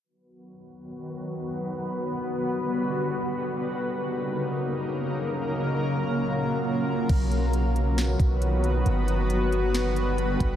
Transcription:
0.04 1.78 D#3 medium
0.04 1.78 F#3 medium
0.04 3.53 B3 medium
0.04 1.78 F#4 medium
0.04 3.53 B4 medium
1.80 3.55 D3 medium
1.80 3.55 G3 medium
1.80 3.55 F#4 medium
3.57 7.06 C#3 medium
3.57 5.31 F#3 medium
3.57 7.06 A#3 medium
3.57 5.31 D#4 medium
3.57 7.06 A#4 medium
5.33 7.08 F#3 medium
5.33 7.08 F4 medium
7.09 8.16 B1 loud
7.09 8.84 D#3 medium
7.09 8.84 F#3 medium
7.09 10.56 B3 medium
7.09 10.56 F#4 medium
7.09 10.56 B4 medium
7.09 kick loud
7.09 closed hi-hat medium
7.09 crash medium
7.32 closed hi-hat medium
7.53 closed hi-hat medium
7.76 closed hi-hat medium
7.98 snare loud
7.98 closed hi-hat medium
8.20 8.83 B1 loud
8.20 kick medium
8.20 closed hi-hat medium
8.42 closed hi-hat medium
8.64 closed hi-hat medium
8.86 10.36 G1 loud
8.86 10.56 D3 medium
8.86 10.56 G3 medium
8.86 closed hi-hat medium
9.08 closed hi-hat medium
9.30 closed hi-hat medium
9.52 closed hi-hat medium
9.74 snare loud
9.74 closed hi-hat medium
9.96 closed hi-hat medium
10.18 closed hi-hat medium
10.40 10.56 G1 loud
10.40 kick loud
10.40 closed hi-hat medium

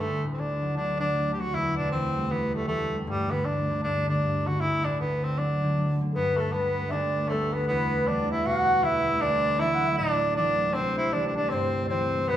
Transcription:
0.00 6.14 D2 medium
0.00 1.59 D2 medium
0.00 0.24 A3 medium
0.24 0.44 A2 soft
0.34 0.41 C4 medium
0.38 0.76 D3 soft
0.38 0.77 D4 medium
0.62 0.82 F#3 medium
0.77 1.14 D3 medium
0.77 0.99 D4 medium
1.00 1.21 F#3 soft
1.00 1.31 D4 medium
1.15 1.59 D3 medium
1.34 1.42 G4 medium
1.38 1.59 F#3 medium
1.38 1.56 F#4 medium
1.54 3.12 E2 medium
1.54 1.77 E4 loud
1.77 3.13 B2 soft
1.77 1.91 D4 medium
1.92 2.30 E3 soft
1.92 2.32 C4 medium
2.16 2.54 G3 medium
2.31 2.67 E3 medium
2.31 2.54 B3 medium
2.55 2.92 G3 soft
2.55 2.67 A3 medium
2.68 3.12 E3 medium
2.68 2.97 A3 medium
2.93 3.12 G3 medium
3.07 3.45 G2 medium
3.07 3.32 G3 medium
3.31 3.69 D3 soft
3.31 3.47 B3 medium
3.45 3.83 G2 soft
3.45 3.83 D4 medium
3.70 4.07 D3 medium
3.84 4.22 G2 medium
3.84 4.06 D4 medium
4.09 4.46 D3 soft
4.09 4.48 D4 medium
4.23 4.66 G2 medium
4.47 4.66 D3 medium
4.47 4.62 F#4 medium
4.61 6.20 D2 medium
4.61 4.86 E4 medium
4.84 5.05 A2 medium
4.84 4.99 D4 medium
5.00 5.62 D3 soft
5.00 5.25 B3 medium
5.23 6.54 A3 medium
5.23 5.40 C4 medium
5.38 5.63 F#3 medium
5.38 6.01 D4 medium
5.63 6.00 D3 soft
5.78 6.01 F#3 medium
6.01 6.20 D3 soft
6.12 12.28 D2 medium
6.12 6.97 G2 medium
6.12 6.39 B3 medium
6.12 6.17 A4 soft
6.12 6.42 B4 medium
6.37 6.54 A3 medium
6.37 6.54 A4 medium
6.52 7.29 G3 soft
6.52 7.31 A3 soft
6.52 6.93 B3 medium
6.52 7.31 B3 medium
6.52 6.85 B4 medium
6.88 7.30 D4 medium
6.88 6.95 E5 soft
6.93 7.74 D2 medium
6.93 7.33 D5 medium
7.29 7.74 G3 soft
7.29 7.55 A3 medium
7.29 10.64 A3 soft
7.29 8.08 B3 medium
7.29 7.55 A4 medium
7.53 7.67 B3 medium
7.53 7.69 B4 medium
7.67 9.28 E2 medium
7.67 8.09 B3 medium
7.67 8.10 B4 medium
8.08 8.51 E3 soft
8.08 8.83 G3 soft
8.08 8.84 B3 soft
8.08 8.30 D4 medium
8.08 8.33 D5 medium
8.31 8.48 E4 medium
8.31 8.46 E5 medium
8.45 9.28 B2 medium
8.45 8.85 F#4 medium
8.45 8.86 F#5 medium
8.83 9.28 E3 soft
8.83 9.28 G3 soft
8.83 10.83 B3 medium
8.83 9.23 E4 medium
8.83 9.24 E5 medium
9.21 10.82 D2 medium
9.21 9.61 D4 loud
9.21 9.63 D5 medium
9.59 10.37 E3 soft
9.59 10.37 F#3 soft
9.59 10.39 D4 medium
9.59 9.97 E4 medium
9.59 9.76 E5 medium
9.74 9.88 F#5 medium
9.87 9.92 E5 medium
9.93 10.00 E5 medium
9.97 10.82 A2 medium
9.97 10.34 D4 loud
9.97 10.36 D5 medium
10.36 10.82 E3 soft
10.36 10.82 F#3 soft
10.36 10.75 D4 medium
10.36 12.37 D4 medium
10.36 10.76 D5 medium
10.74 12.35 C2 medium
10.74 10.97 C4 loud
10.74 11.14 C5 medium
10.98 11.14 E4 medium
11.13 11.90 E3 soft
11.13 11.90 G3 soft
11.13 11.91 C4 medium
11.13 11.26 D4 medium
11.13 11.27 D5 medium
11.27 11.36 D4 medium
11.36 11.51 D4 medium
11.36 11.54 D5 medium
11.50 12.35 G2 medium
11.50 11.88 C4 medium
11.50 11.85 C5 medium
11.85 12.29 C4 medium
11.85 11.92 D5 medium
11.91 12.35 E3 soft
11.91 12.35 G3 soft
11.91 12.37 C4 soft
11.91 12.32 C5 medium
12.28 12.37 D2 medium
12.28 12.37 A2 medium
12.28 12.37 B3 loud
12.28 12.37 B4 medium

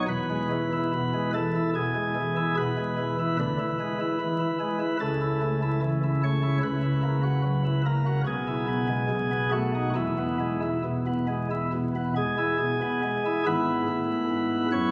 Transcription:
0.08 3.35 E1 medium
0.08 3.35 E2 medium
0.08 1.31 B4 medium
0.30 0.49 G#3 soft
0.51 0.70 E3 medium
0.73 0.91 E4 soft
0.94 1.12 B2 medium
1.14 1.32 G#3 soft
1.34 1.53 E3 soft
1.34 1.69 A4 medium
1.55 1.73 E4 soft
1.75 1.93 B2 soft
1.75 2.55 G#4 medium
1.95 2.14 G#3 soft
2.15 2.34 E3 soft
2.37 2.55 E4 medium
2.57 2.76 B2 soft
2.57 3.37 B4 medium
2.77 2.96 G#3 soft
2.98 3.16 E3 soft
3.19 3.36 E4 medium
3.39 3.57 D2 medium
3.39 3.57 D3 medium
3.39 4.97 B4 loud
3.59 3.78 E4 medium
3.80 3.98 G#3 medium
4.00 4.18 E4 medium
4.20 4.38 E3 soft
4.40 4.58 E4 medium
4.60 4.78 G#3 soft
4.80 4.97 E4 soft
5.00 6.60 C#2 medium
5.00 6.59 C#3 medium
5.00 5.80 A4 medium
5.21 5.40 E4 medium
5.42 5.60 A3 medium
5.62 5.81 E4 medium
5.82 6.00 E3 medium
6.03 6.21 E4 medium
6.23 6.42 A3 medium
6.23 6.58 C#5 loud
6.43 6.60 E4 medium
6.63 8.23 C#2 medium
6.63 8.23 C#3 medium
6.63 7.81 B4 loud
6.82 7.01 E4 medium
7.03 7.21 A#3 medium
7.23 7.42 F#4 medium
7.44 7.62 F#3 medium
7.65 7.83 E4 medium
7.86 8.04 A#3 soft
7.86 8.21 A#4 medium
8.06 8.24 F#4 medium
8.27 9.08 B1 medium
8.27 9.08 B2 medium
8.27 9.49 G#4 medium
8.47 8.66 E4 medium
8.68 8.87 B3 soft
8.89 9.07 G#3 medium
9.10 9.94 B1 medium
9.10 9.94 B2 medium
9.31 9.50 B3 medium
9.52 9.72 A3 soft
9.52 9.89 F#4 medium
9.75 9.93 D#4 soft
9.96 12.12 E1 medium
9.96 12.12 E2 medium
9.96 10.60 E4 medium
10.18 10.38 B3 soft
10.40 10.60 G#3 medium
10.62 10.82 E4 soft
10.84 11.04 B2 soft
11.06 11.26 B3 soft
11.28 11.48 G#3 soft
11.51 11.70 E4 soft
11.73 11.93 B2 soft
11.96 12.14 B3 soft
12.16 12.36 G#3 soft
12.16 13.43 G#4 medium
12.38 12.58 E4 soft
12.60 12.79 B2 soft
12.82 13.02 B3 soft
13.03 13.23 G#3 soft
13.26 13.44 E4 soft
13.46 13.83 G#1 medium
13.46 13.83 G#2 medium
13.46 14.91 B3 soft
13.46 14.91 E4 soft
13.46 14.68 B4 loud
13.88 14.24 A2 medium
14.30 14.66 G#2 medium
14.72 14.91 F#2 medium
14.72 14.91 C#5 medium

